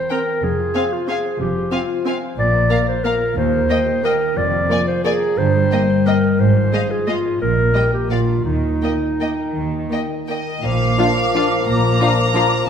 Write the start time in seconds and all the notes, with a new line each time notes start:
Already playing: E3 C4 A#4 C5
0.10 C4 A#4 G5 A#5
0.27 A#4
0.42 F1 F2 F3 G#4
0.59 F4
0.74 C4 C5 F5 G#5
0.92 F4 F5
1.08 C4 G#4 F5 G#5
1.25 C5
1.40 F1 F2 F3 G4
1.55 F4
1.71 C4 F4 C5 F5 G#5
1.89 F5
2.05 C4 F5 G#5
2.23 C5
2.38 A#1 A#2 D5
2.53 A#3
2.70 A#3 A#4 F5 A#5
2.87 F4 C5
3.04 A#3 A#4 F5 A#5
3.20 A#4
3.36 D#2 D#3 C5
3.53 A#3
3.69 A#3 A#4 D#5 G5
3.86 G4
4.03 A#3 A#4 D#5 G5
4.20 A#4
4.36 F1 F2 F3 D5
4.52 F4
4.69 A#3 G#4 D5 G#5
4.87 C5 F5
5.04 A#3 G#4 D5 G#5 A#5
5.22 G#4
5.37 G1 G2 C5
5.54 G3
5.71 A#3 A#4 D#5 G5
5.90 G4
6.07 A#3 A#4 D#5 G5
6.24 A#4
6.39 G#1 G#2 C5
6.56 F3
6.72 G#3 G#4 D#5 F5
6.90 F4 G#4
7.08 G#3 F4 D#5 F5
7.25 G#4
7.40 A#1 A#2 A#4
7.57 A#3
7.75 G3 G4 D#5 G5
7.93 G4 A#4
8.10 A#1 A#2 A#3 F4 D5 F5
8.27 D4 F4
8.44 D#2 D#3 D#4
8.63 D#4
8.82 A#3 A#4 D#5 G5
9.01 D#5
9.20 A#3 D#5 G5
9.38 A#4
9.56 D#2 D#3
9.74 D#4
9.91 A#3 A#4 D#5 G5
10.10 D#5
10.28 A#3 D#5 G5
10.47 A#4
10.63 A#1 A#2 F3 A#4 F5 D6
10.72 F3
10.80 A#3
10.89 D4
10.98 F3 D4 F4 F5
11.08 A#4
11.16 D5
11.25 F5
11.34 F3 D4 F4 D5 F5
11.43 A#4
11.51 F4
11.59 A#3
11.68 A#1 A#2 A#5
11.76 F3
11.83 A#3
11.92 D4
12.00 F3 D4 F4 F5
12.09 A#4
12.18 D5
12.25 F5
12.34 F3 D4 F4 D5 F5
12.42 A#4
12.50 F4
12.59 A#3
12.65 C3